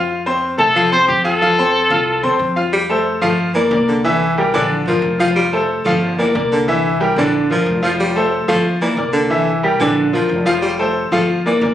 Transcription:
Already playing: upright bass F2, grand piano F4 F5 F6
0.26 grand piano C4 C5 C6
0.58 upright bass C2, grand piano A3 A4 A5, trumpet A4
0.76 grand piano F3 F4 F5
0.91 grand piano C4 C5 C6, trumpet C5
1.08 upright bass F2, trumpet G4
1.24 grand piano F4 F5 F6, trumpet A4
1.41 grand piano F3 F4 F5
1.59 grand piano C4 C5 C6
1.90 upright bass C2, grand piano F4 F5 F6
2.23 upright bass E2, grand piano C4 C5 C6
2.39 upright bass F2
2.56 grand piano F4 F5 F6
2.73 baritone saxophone G3
2.89 grand piano A3 A4 C5
3.21 upright bass G2, grand piano F3 F4 F5, baritone saxophone A3
3.54 baritone saxophone E3, grand piano A#3 A#4 D5
3.71 upright bass C2, grand piano A#3 A#4 D5
3.88 baritone saxophone D3
4.04 grand piano E3 E4 E5
4.37 grand piano G3 G4 A#4
4.54 upright bass A#1, grand piano D3 D4 D5, baritone saxophone E3
4.86 upright bass G1, baritone saxophone F3, grand piano F3 F4 A#4
5.02 upright bass F1
5.19 grand piano F3 F4 F5, baritone saxophone F3
5.36 baritone saxophone G3
5.53 grand piano A3 A4 C5
5.84 upright bass G1, grand piano F3 F4 F5, baritone saxophone A3
6.18 baritone saxophone E3, grand piano A#3 A#4 D5
6.35 upright bass C2, grand piano A#3 A#4 D5
6.52 baritone saxophone D3
6.68 grand piano E3 E4 E5
7.00 grand piano G3 G4 A#4
7.16 upright bass A#1, grand piano D3 D4 D5, baritone saxophone E3
7.50 upright bass G1, grand piano F3 F4 A#4, baritone saxophone F3
7.66 upright bass F1
7.83 grand piano F3 F4 F5, baritone saxophone F3
8.00 baritone saxophone G3
8.16 grand piano A3 A4 C5
8.48 upright bass G1, grand piano F3 F4 F5, baritone saxophone A3
8.81 baritone saxophone E3, grand piano A#3 A#4 D5
8.97 upright bass C2, grand piano A#3 A#4 D5
9.13 baritone saxophone D3
9.30 grand piano E3 E4 E5
9.63 grand piano G3 G4 A#4
9.80 upright bass A#1, grand piano D3 D4 D5, baritone saxophone E3
10.13 upright bass G1, grand piano F3 F4 A#4, baritone saxophone F3
10.29 upright bass F1
10.45 grand piano F3 F4 F5, baritone saxophone F3
10.62 baritone saxophone G3
10.79 grand piano A3 A4 C5
11.12 upright bass G1, grand piano F3 F4 F5, baritone saxophone A3
11.46 baritone saxophone E3, grand piano A#3 A#4 D5
11.61 upright bass C2, grand piano A#3 A#4 D5

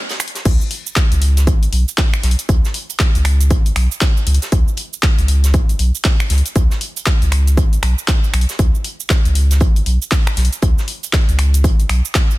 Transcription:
0.09 snare, closed hi-hat, shaker
0.20 finger snap, closed hi-hat, open hi-hat, shaker
0.28 closed hi-hat
0.35 snare, closed hi-hat, shaker
0.45 sub bass C#2, kick, closed hi-hat, crash, shaker
0.61 shaker
0.71 closed hi-hat, open hi-hat
0.87 shaker
0.96 kick, snare, clap, closed hi-hat, shaker
1.12 sub bass C#2, closed hi-hat, shaker
1.22 closed hi-hat, open hi-hat
1.37 snare, closed hi-hat, shaker
1.47 sub bass G#1, kick, closed hi-hat, shaker
1.63 closed hi-hat, shaker
1.73 sub bass B1, closed hi-hat, open hi-hat
1.88 shaker
1.98 kick, snare, clap, closed hi-hat, open hi-hat, shaker
2.14 finger snap, shaker
2.23 sub bass B1, snare, closed hi-hat, open hi-hat
2.31 closed hi-hat
2.39 closed hi-hat, shaker
2.49 sub bass C#2, kick, closed hi-hat, shaker
2.65 snare, shaker
2.74 closed hi-hat, open hi-hat
2.90 closed hi-hat, shaker
2.99 kick, snare, clap, closed hi-hat, shaker
3.15 sub bass C#2, closed hi-hat, shaker
3.25 finger snap, closed hi-hat, open hi-hat
3.41 closed hi-hat, shaker
3.50 sub bass G#1, kick, closed hi-hat, shaker
3.66 closed hi-hat, shaker
3.76 sub bass B1, finger snap, closed hi-hat, open hi-hat
3.92 shaker
4.01 kick, snare, clap, closed hi-hat, shaker
4.17 closed hi-hat, shaker
4.27 sub bass C#2, closed hi-hat, open hi-hat
4.34 closed hi-hat
4.42 snare, closed hi-hat, shaker
4.52 sub bass C#2, kick, closed hi-hat, shaker
4.68 shaker
4.77 closed hi-hat, open hi-hat
4.93 shaker
5.03 kick, snare, clap, closed hi-hat, shaker
5.19 sub bass C#2, closed hi-hat, shaker
5.28 closed hi-hat, open hi-hat
5.44 snare, closed hi-hat, shaker
5.54 sub bass G#1, kick, closed hi-hat, shaker
5.69 closed hi-hat, shaker
5.79 sub bass B1, closed hi-hat, open hi-hat
5.95 shaker
6.04 kick, snare, clap, closed hi-hat, open hi-hat, shaker
6.20 finger snap, shaker
6.30 sub bass C#2, snare, closed hi-hat, open hi-hat
6.38 closed hi-hat
6.46 closed hi-hat, shaker
6.56 sub bass C#2, kick, closed hi-hat, shaker
6.71 snare, shaker
6.81 closed hi-hat, open hi-hat
6.97 closed hi-hat, shaker
7.06 kick, snare, clap, closed hi-hat, shaker
7.22 sub bass C#2, closed hi-hat, shaker
7.32 finger snap, closed hi-hat, open hi-hat
7.47 closed hi-hat, shaker
7.57 sub bass G#1, kick, closed hi-hat, shaker
7.73 closed hi-hat, shaker
7.83 sub bass B1, finger snap, closed hi-hat, open hi-hat
7.98 shaker
8.08 kick, snare, clap, closed hi-hat, shaker
8.24 closed hi-hat, shaker
8.34 sub bass B1, finger snap, closed hi-hat, open hi-hat
8.41 closed hi-hat
8.49 snare, closed hi-hat, shaker
8.59 sub bass C#2, kick, closed hi-hat, shaker
8.75 shaker
8.84 closed hi-hat, open hi-hat
9.00 shaker
9.10 kick, snare, clap, closed hi-hat, shaker
9.25 sub bass C#2, closed hi-hat, shaker
9.35 closed hi-hat, open hi-hat
9.51 snare, closed hi-hat, shaker
9.60 sub bass G#1, kick, closed hi-hat, shaker
9.76 closed hi-hat, shaker
9.86 sub bass B1, closed hi-hat, open hi-hat
10.02 shaker
10.11 kick, snare, clap, closed hi-hat, open hi-hat, shaker
10.27 finger snap, shaker
10.37 sub bass B1, snare, closed hi-hat, open hi-hat
10.45 closed hi-hat
10.53 closed hi-hat, shaker
10.62 sub bass C#2, kick, closed hi-hat, shaker
10.78 snare, shaker
10.88 closed hi-hat, open hi-hat
11.03 closed hi-hat, shaker
11.13 kick, snare, clap, closed hi-hat, shaker
11.29 sub bass C#2, closed hi-hat, shaker
11.39 finger snap, closed hi-hat, open hi-hat
11.54 closed hi-hat, shaker
11.64 sub bass G#1, kick, closed hi-hat, shaker
11.80 closed hi-hat, shaker
11.89 sub bass B1, finger snap, closed hi-hat, open hi-hat
12.05 shaker
12.14 kick, snare, clap, closed hi-hat, shaker
12.31 closed hi-hat, shaker

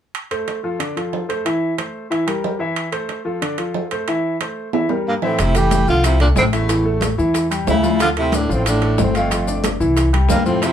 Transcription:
0.15 high timbale
0.31 grand piano A3 A4 C5, high timbale
0.48 high timbale, low timbale
0.63 grand piano F3 F4 A4
0.79 grand piano D3 D4 D5, high timbale
0.96 grand piano F3 F4 A4, high timbale
1.13 low timbale
1.29 grand piano A3 A4 C5, high timbale
1.45 grand piano E3 E4 E5, high timbale
1.78 grand piano A3 A4 C5, high timbale, low timbale
2.10 grand piano E3 E4 E5, high timbale
2.27 grand piano G3 G4 A#4, high timbale
2.44 low timbale
2.59 grand piano E3 E4 E5
2.76 high timbale
2.92 grand piano A3 A4 C5, high timbale
3.09 high timbale, low timbale
3.25 grand piano F3 F4 A4
3.42 grand piano D3 D4 D5, high timbale
3.58 grand piano F3 F4 A4, high timbale
3.74 low timbale
3.91 grand piano A3 A4 C5, high timbale
4.08 grand piano E3 E4 E5, high timbale
4.41 grand piano A3 A4 C5, high timbale, low timbale
4.73 grand piano E3 E4 E5, high timbale
4.89 grand piano G3 G4 A#4, high timbale
5.08 baritone saxophone G2, tenor saxophone A#3
5.22 baritone saxophone A2, grand piano E3 E4 E5, tenor saxophone C4, low timbale
5.38 upright bass F1, baritone saxophone C3, tenor saxophone E4, high bongo, high conga, high timbale, maracas
5.55 baritone saxophone E3, grand piano A3 A4, tenor saxophone G4, high conga, high timbale, maracas
5.71 high bongo, high conga, high timbale, low timbale, maracas
5.87 upright bass C2, baritone saxophone D3, grand piano F3 F4, tenor saxophone F4, high bongo, high conga, maracas
6.03 baritone saxophone C3, tenor saxophone E4, high bongo, high conga, high timbale, maracas
6.19 baritone saxophone A#2, grand piano A3 A4, tenor saxophone D4, high bongo, high conga, high timbale
6.36 upright bass A1, baritone saxophone A2, tenor saxophone C4, high bongo, low bongo, high conga, low timbale, maracas
6.51 baritone saxophone E2, tenor saxophone A3, grand piano E4 E5, high bongo, high conga, high timbale, maracas
6.68 grand piano E3 E4, high bongo, high conga, high timbale, maracas
6.84 grand piano A3 A4, high conga
7.01 high bongo, high conga, high timbale, low timbale, maracas
7.18 upright bass E2, grand piano E3 E4, high bongo, high conga, maracas
7.34 high bongo, high conga, high timbale, maracas
7.51 grand piano G3 G4, high bongo, high conga, high timbale, maracas
7.67 upright bass D2, baritone saxophone C#3, tenor saxophone E4, high bongo, low bongo, high conga, low timbale, maracas
7.83 grand piano F3 F4, high bongo, high conga, maracas
8.00 baritone saxophone D3, tenor saxophone F4, high bongo, high conga, high timbale, maracas
8.16 baritone saxophone C3, grand piano A3 A4, tenor saxophone E4, high conga, high timbale
8.32 baritone saxophone A2, tenor saxophone D4, high bongo, high conga, high timbale, low timbale, maracas
8.49 upright bass A1, baritone saxophone A2, grand piano F3 F4, tenor saxophone C4, high bongo, high conga, maracas
8.66 baritone saxophone A2, tenor saxophone D4, high bongo, high conga, high timbale, maracas
8.82 grand piano A3 A4, high bongo, high conga, high timbale
8.98 upright bass G1, baritone saxophone A2, tenor saxophone C4, high bongo, low bongo, high conga, low timbale, maracas
9.14 baritone saxophone F2, tenor saxophone A3, grand piano F4 F5, high bongo, high conga, high timbale, maracas
9.30 grand piano F3 F4, high bongo, high conga, high timbale, maracas
9.47 grand piano D4 D5, high conga, maracas
9.64 high bongo, high conga, high timbale, low timbale, maracas
9.80 upright bass C2, grand piano E3 E4, high bongo, high conga, maracas
9.97 high bongo, high conga, high timbale, maracas
10.13 grand piano G3 G4, high bongo, high conga, high timbale
10.29 upright bass F2, baritone saxophone G2, tenor saxophone A#3, high bongo, low bongo, high conga, low timbale, maracas
10.46 baritone saxophone A2, grand piano F3 F4, tenor saxophone C4, high bongo, high conga, maracas
10.62 baritone saxophone C3, tenor saxophone E4, high bongo, high conga, high timbale, maracas

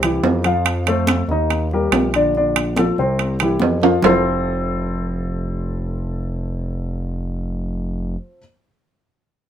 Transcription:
Already playing: analog synth bass C2
0.02 grand piano E3 E4 G4, high conga, high timbale
0.23 analog synth bass F2, high conga, low timbale
0.44 grand piano F3 F4 F5, high conga, high timbale
0.65 high conga, high timbale
0.86 grand piano A3 A4 C5, high conga, high timbale
1.07 high conga, high timbale
1.28 analog synth bass D#2, grand piano D#3 D#4 D#5, high conga
1.50 high conga, high timbale
1.71 grand piano G3 G4 A#4, high conga
1.92 analog synth bass A#1, high conga, high timbale, low timbale
2.14 grand piano D3 D4 D5, high conga, high timbale
2.35 grand piano D3 D4 D5, high conga
2.56 high conga, high timbale
2.76 grand piano F3 F4 A4, high conga, high timbale
2.98 analog synth bass C2, grand piano C3 C4 C5, high conga
3.19 high conga, high timbale
3.39 grand piano E3 E4 G4, high conga, high timbale
3.60 analog synth bass F2, high conga, low timbale
3.82 grand piano F3 F4 F5, high conga, high timbale
4.02 analog synth bass F1, grand piano F3 C4 E4 F4 A4 C5, low conga, low timbale

